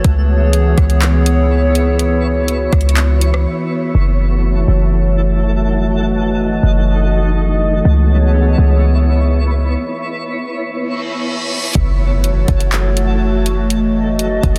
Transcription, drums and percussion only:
0.04 kick, closed hi-hat
0.53 closed hi-hat
0.78 kick, cross-stick, closed hi-hat
0.90 closed hi-hat
1.02 clap, closed hi-hat
1.26 closed hi-hat
1.75 closed hi-hat
1.99 closed hi-hat
2.48 closed hi-hat
2.73 kick, cross-stick, closed hi-hat
2.81 closed hi-hat
2.89 closed hi-hat
2.97 clap, closed hi-hat
3.21 closed hi-hat
3.34 cross-stick
11.75 kick, closed hi-hat
12.24 closed hi-hat
12.48 kick, closed hi-hat
12.60 closed hi-hat
12.72 clap, closed hi-hat
12.97 closed hi-hat
13.46 closed hi-hat
13.70 closed hi-hat
14.19 closed hi-hat
14.43 kick, closed hi-hat

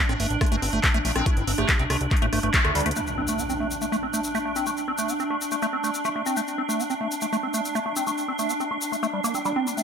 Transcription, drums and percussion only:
0.09 cross-stick, closed hi-hat
0.20 open hi-hat
0.30 closed hi-hat
0.41 kick, cross-stick, closed hi-hat
0.46 closed hi-hat
0.52 closed hi-hat
0.62 open hi-hat
0.73 closed hi-hat
0.84 kick, cross-stick, clap, closed hi-hat
0.94 closed hi-hat
1.05 open hi-hat
1.16 cross-stick, closed hi-hat
1.26 kick, closed hi-hat
1.37 closed hi-hat
1.48 open hi-hat
1.58 cross-stick, closed hi-hat
1.69 kick, clap, closed hi-hat
1.79 closed hi-hat
1.90 cross-stick, open hi-hat
2.01 closed hi-hat
2.11 kick, clap, closed hi-hat
2.17 closed hi-hat
2.22 closed hi-hat
2.33 cross-stick, open hi-hat
2.43 closed hi-hat
2.54 kick, clap, closed hi-hat
2.65 cross-stick, closed hi-hat
2.75 closed hi-hat, open hi-hat
2.81 closed hi-hat
2.86 closed hi-hat
2.91 closed hi-hat
2.96 shaker
3.07 shaker
3.28 shaker
3.39 shaker
3.50 shaker
3.71 shaker
3.82 shaker
3.93 shaker
4.14 shaker
4.24 shaker
4.35 shaker
4.56 shaker
4.66 shaker
4.77 shaker
4.98 shaker
5.09 shaker
5.20 shaker
5.41 shaker
5.51 shaker
5.62 shaker
5.84 shaker
5.94 shaker
6.05 shaker
6.26 shaker
6.37 shaker
6.48 shaker
6.70 shaker
6.80 shaker
6.90 shaker
7.11 shaker
7.21 shaker
7.33 shaker
7.54 shaker
7.65 shaker
7.75 shaker
7.96 shaker
8.07 shaker
8.18 shaker
8.39 shaker
8.50 shaker
8.60 shaker
8.81 shaker
8.93 shaker
9.03 shaker
9.24 shaker
9.35 shaker
9.45 shaker
9.67 shaker
9.78 shaker

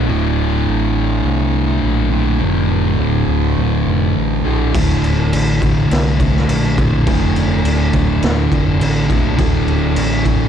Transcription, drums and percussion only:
4.75 kick, crash
5.04 crash
5.33 crash
5.62 kick, crash
5.91 snare, crash
6.20 kick, crash
6.36 snare
6.49 crash
6.78 kick, crash
7.07 kick, crash
7.36 crash
7.65 crash
7.93 kick, crash
8.22 snare, crash
8.52 kick, crash
8.81 crash
9.10 kick, crash
9.39 kick, crash
9.68 crash
9.96 crash
10.25 kick, crash

